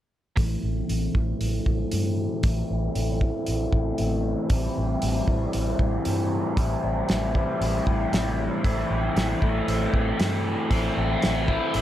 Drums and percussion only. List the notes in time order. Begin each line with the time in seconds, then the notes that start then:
0.37 kick, open hi-hat
0.89 open hi-hat
1.15 kick
1.41 open hi-hat
1.66 kick
1.92 open hi-hat
2.43 kick, open hi-hat
2.95 open hi-hat
3.21 kick
3.47 open hi-hat
3.73 kick
3.98 open hi-hat
4.50 kick, open hi-hat
5.02 open hi-hat
5.28 kick
5.53 open hi-hat
5.79 kick
6.05 open hi-hat
6.57 kick, open hi-hat
7.09 snare, open hi-hat
7.35 kick
7.62 open hi-hat
7.87 kick
8.13 snare, open hi-hat
8.64 kick, open hi-hat
9.16 snare, open hi-hat
9.42 kick
9.68 open hi-hat
9.94 kick
10.20 snare, open hi-hat
10.71 kick, open hi-hat
11.22 snare, open hi-hat
11.48 kick
11.74 open hi-hat